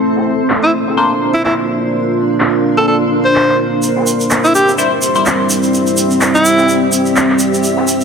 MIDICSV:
0, 0, Header, 1, 6, 480
1, 0, Start_track
1, 0, Tempo, 476190
1, 20, Time_signature, 4, 2, 24, 8
1, 8106, End_track
2, 0, Start_track
2, 0, Title_t, "Ambient pad"
2, 0, Program_c, 0, 92
2, 0, Note_on_c, 0, 60, 78
2, 0, Note_on_c, 0, 84, 71
2, 22, Note_on_c, 0, 62, 70
2, 181, Note_on_c, 0, 70, 78
2, 908, Note_on_c, 0, 77, 71
2, 1362, Note_off_c, 0, 60, 0
2, 3858, Note_on_c, 0, 60, 86
2, 3860, Note_off_c, 0, 77, 0
2, 3861, Note_off_c, 0, 70, 0
2, 4198, Note_on_c, 0, 67, 90
2, 4917, Note_on_c, 0, 76, 83
2, 5213, Note_off_c, 0, 62, 0
2, 7699, Note_off_c, 0, 60, 0
2, 7703, Note_off_c, 0, 84, 0
2, 8106, Note_off_c, 0, 67, 0
2, 8106, Note_off_c, 0, 76, 0
2, 8106, End_track
3, 0, Start_track
3, 0, Title_t, "Alto saxophone"
3, 0, Program_c, 1, 65
3, 636, Note_on_c, 1, 64, 84
3, 720, Note_off_c, 1, 64, 0
3, 1355, Note_on_c, 1, 64, 80
3, 1423, Note_off_c, 1, 64, 0
3, 1460, Note_on_c, 1, 64, 67
3, 1547, Note_off_c, 1, 64, 0
3, 2796, Note_on_c, 1, 69, 80
3, 2863, Note_off_c, 1, 69, 0
3, 2900, Note_on_c, 1, 69, 69
3, 2987, Note_off_c, 1, 69, 0
3, 3275, Note_on_c, 1, 72, 82
3, 3620, Note_off_c, 1, 72, 0
3, 4476, Note_on_c, 1, 64, 80
3, 4560, Note_off_c, 1, 64, 0
3, 4581, Note_on_c, 1, 67, 86
3, 4746, Note_off_c, 1, 67, 0
3, 6396, Note_on_c, 1, 64, 87
3, 6876, Note_off_c, 1, 64, 0
3, 8106, End_track
4, 0, Start_track
4, 0, Title_t, "Synth stab"
4, 0, Program_c, 2, 62
4, 980, Note_on_c, 2, 58, 83
4, 980, Note_on_c, 2, 62, 76
4, 980, Note_on_c, 2, 72, 92
4, 1116, Note_off_c, 2, 58, 0
4, 1116, Note_off_c, 2, 62, 0
4, 1116, Note_off_c, 2, 72, 0
4, 4820, Note_on_c, 2, 55, 83
4, 4820, Note_on_c, 2, 64, 78
4, 4820, Note_on_c, 2, 72, 89
4, 4955, Note_off_c, 2, 55, 0
4, 4955, Note_off_c, 2, 64, 0
4, 4955, Note_off_c, 2, 72, 0
4, 5195, Note_on_c, 2, 72, 82
4, 5196, Note_on_c, 2, 55, 74
4, 5196, Note_on_c, 2, 64, 69
4, 5301, Note_off_c, 2, 55, 0
4, 5301, Note_off_c, 2, 64, 0
4, 5301, Note_off_c, 2, 72, 0
4, 8106, End_track
5, 0, Start_track
5, 0, Title_t, "Ambient pad"
5, 0, Program_c, 3, 92
5, 0, Note_on_c, 3, 72, 84
5, 20, Note_on_c, 3, 58, 79
5, 20, Note_on_c, 3, 62, 72
5, 21, Note_on_c, 3, 65, 72
5, 3820, Note_off_c, 3, 72, 0
5, 3822, Note_off_c, 3, 58, 0
5, 3822, Note_off_c, 3, 62, 0
5, 3822, Note_off_c, 3, 65, 0
5, 3861, Note_on_c, 3, 55, 80
5, 3861, Note_on_c, 3, 60, 71
5, 3861, Note_on_c, 3, 64, 74
5, 3861, Note_on_c, 3, 72, 89
5, 5762, Note_off_c, 3, 72, 0
5, 5780, Note_on_c, 3, 74, 85
5, 7662, Note_off_c, 3, 55, 0
5, 7663, Note_off_c, 3, 60, 0
5, 7663, Note_off_c, 3, 64, 0
5, 7681, Note_off_c, 3, 74, 0
5, 7701, Note_on_c, 3, 55, 80
5, 7701, Note_on_c, 3, 59, 72
5, 7701, Note_on_c, 3, 71, 87
5, 7702, Note_on_c, 3, 62, 70
5, 8106, Note_off_c, 3, 55, 0
5, 8106, Note_off_c, 3, 59, 0
5, 8106, Note_off_c, 3, 62, 0
5, 8106, Note_off_c, 3, 71, 0
5, 8106, End_track
6, 0, Start_track
6, 0, Title_t, "Drums"
6, 25, Note_on_c, 9, 54, 74
6, 126, Note_off_c, 9, 54, 0
6, 162, Note_on_c, 9, 38, 46
6, 258, Note_on_c, 9, 54, 65
6, 263, Note_off_c, 9, 38, 0
6, 359, Note_off_c, 9, 54, 0
6, 502, Note_on_c, 9, 39, 109
6, 508, Note_on_c, 9, 54, 74
6, 603, Note_off_c, 9, 39, 0
6, 608, Note_off_c, 9, 54, 0
6, 884, Note_on_c, 9, 38, 36
6, 985, Note_off_c, 9, 38, 0
6, 1120, Note_on_c, 9, 42, 40
6, 1221, Note_off_c, 9, 42, 0
6, 1222, Note_on_c, 9, 54, 59
6, 1323, Note_off_c, 9, 54, 0
6, 1463, Note_on_c, 9, 39, 104
6, 1563, Note_off_c, 9, 39, 0
6, 1702, Note_on_c, 9, 46, 73
6, 1803, Note_off_c, 9, 46, 0
6, 1936, Note_on_c, 9, 54, 82
6, 2037, Note_off_c, 9, 54, 0
6, 2078, Note_on_c, 9, 42, 38
6, 2178, Note_off_c, 9, 42, 0
6, 2181, Note_on_c, 9, 54, 66
6, 2282, Note_off_c, 9, 54, 0
6, 2418, Note_on_c, 9, 54, 81
6, 2422, Note_on_c, 9, 39, 107
6, 2519, Note_off_c, 9, 54, 0
6, 2523, Note_off_c, 9, 39, 0
6, 2661, Note_on_c, 9, 54, 62
6, 2762, Note_off_c, 9, 54, 0
6, 2796, Note_on_c, 9, 38, 42
6, 2897, Note_off_c, 9, 38, 0
6, 3140, Note_on_c, 9, 54, 66
6, 3241, Note_off_c, 9, 54, 0
6, 3383, Note_on_c, 9, 39, 102
6, 3484, Note_off_c, 9, 39, 0
6, 3518, Note_on_c, 9, 39, 32
6, 3619, Note_off_c, 9, 39, 0
6, 3626, Note_on_c, 9, 54, 62
6, 3726, Note_off_c, 9, 54, 0
6, 3857, Note_on_c, 9, 82, 45
6, 3864, Note_on_c, 9, 54, 76
6, 3958, Note_off_c, 9, 82, 0
6, 3965, Note_off_c, 9, 54, 0
6, 3996, Note_on_c, 9, 38, 44
6, 4097, Note_off_c, 9, 38, 0
6, 4100, Note_on_c, 9, 54, 61
6, 4102, Note_on_c, 9, 82, 82
6, 4200, Note_off_c, 9, 54, 0
6, 4203, Note_off_c, 9, 82, 0
6, 4237, Note_on_c, 9, 82, 36
6, 4337, Note_off_c, 9, 82, 0
6, 4337, Note_on_c, 9, 82, 47
6, 4342, Note_on_c, 9, 39, 100
6, 4438, Note_off_c, 9, 82, 0
6, 4443, Note_off_c, 9, 39, 0
6, 4479, Note_on_c, 9, 82, 35
6, 4580, Note_off_c, 9, 82, 0
6, 4588, Note_on_c, 9, 82, 74
6, 4689, Note_off_c, 9, 82, 0
6, 4720, Note_on_c, 9, 82, 34
6, 4722, Note_on_c, 9, 38, 36
6, 4821, Note_off_c, 9, 82, 0
6, 4823, Note_off_c, 9, 38, 0
6, 4824, Note_on_c, 9, 54, 82
6, 4824, Note_on_c, 9, 82, 49
6, 4925, Note_off_c, 9, 54, 0
6, 4925, Note_off_c, 9, 82, 0
6, 4954, Note_on_c, 9, 42, 39
6, 5055, Note_off_c, 9, 42, 0
6, 5061, Note_on_c, 9, 82, 79
6, 5064, Note_on_c, 9, 54, 68
6, 5162, Note_off_c, 9, 82, 0
6, 5165, Note_off_c, 9, 54, 0
6, 5192, Note_on_c, 9, 82, 32
6, 5293, Note_off_c, 9, 82, 0
6, 5301, Note_on_c, 9, 82, 51
6, 5302, Note_on_c, 9, 39, 104
6, 5401, Note_off_c, 9, 82, 0
6, 5403, Note_off_c, 9, 39, 0
6, 5432, Note_on_c, 9, 42, 38
6, 5533, Note_off_c, 9, 42, 0
6, 5542, Note_on_c, 9, 82, 83
6, 5544, Note_on_c, 9, 46, 72
6, 5643, Note_off_c, 9, 82, 0
6, 5645, Note_off_c, 9, 46, 0
6, 5674, Note_on_c, 9, 82, 33
6, 5770, Note_on_c, 9, 54, 83
6, 5775, Note_off_c, 9, 82, 0
6, 5786, Note_on_c, 9, 82, 50
6, 5871, Note_off_c, 9, 54, 0
6, 5886, Note_off_c, 9, 82, 0
6, 5914, Note_on_c, 9, 82, 33
6, 5915, Note_on_c, 9, 42, 41
6, 6015, Note_off_c, 9, 82, 0
6, 6016, Note_off_c, 9, 42, 0
6, 6018, Note_on_c, 9, 54, 58
6, 6021, Note_on_c, 9, 82, 77
6, 6119, Note_off_c, 9, 54, 0
6, 6122, Note_off_c, 9, 82, 0
6, 6155, Note_on_c, 9, 82, 32
6, 6255, Note_off_c, 9, 82, 0
6, 6258, Note_on_c, 9, 82, 47
6, 6263, Note_on_c, 9, 39, 105
6, 6359, Note_off_c, 9, 82, 0
6, 6364, Note_off_c, 9, 39, 0
6, 6400, Note_on_c, 9, 82, 30
6, 6501, Note_off_c, 9, 82, 0
6, 6503, Note_on_c, 9, 82, 86
6, 6604, Note_off_c, 9, 82, 0
6, 6627, Note_on_c, 9, 38, 46
6, 6636, Note_on_c, 9, 82, 34
6, 6728, Note_off_c, 9, 38, 0
6, 6737, Note_off_c, 9, 82, 0
6, 6741, Note_on_c, 9, 82, 45
6, 6842, Note_off_c, 9, 82, 0
6, 6979, Note_on_c, 9, 54, 60
6, 6981, Note_on_c, 9, 82, 83
6, 7080, Note_off_c, 9, 54, 0
6, 7081, Note_off_c, 9, 82, 0
6, 7114, Note_on_c, 9, 82, 35
6, 7215, Note_off_c, 9, 82, 0
6, 7220, Note_on_c, 9, 82, 47
6, 7222, Note_on_c, 9, 39, 101
6, 7321, Note_off_c, 9, 82, 0
6, 7323, Note_off_c, 9, 39, 0
6, 7356, Note_on_c, 9, 42, 36
6, 7358, Note_on_c, 9, 39, 32
6, 7451, Note_on_c, 9, 82, 74
6, 7456, Note_off_c, 9, 42, 0
6, 7459, Note_off_c, 9, 39, 0
6, 7460, Note_on_c, 9, 54, 56
6, 7551, Note_off_c, 9, 82, 0
6, 7561, Note_off_c, 9, 54, 0
6, 7600, Note_on_c, 9, 82, 37
6, 7693, Note_on_c, 9, 54, 85
6, 7694, Note_off_c, 9, 82, 0
6, 7694, Note_on_c, 9, 82, 50
6, 7794, Note_off_c, 9, 54, 0
6, 7795, Note_off_c, 9, 82, 0
6, 7832, Note_on_c, 9, 38, 45
6, 7933, Note_off_c, 9, 38, 0
6, 7940, Note_on_c, 9, 54, 68
6, 7940, Note_on_c, 9, 82, 79
6, 8041, Note_off_c, 9, 54, 0
6, 8041, Note_off_c, 9, 82, 0
6, 8071, Note_on_c, 9, 82, 34
6, 8106, Note_off_c, 9, 82, 0
6, 8106, End_track
0, 0, End_of_file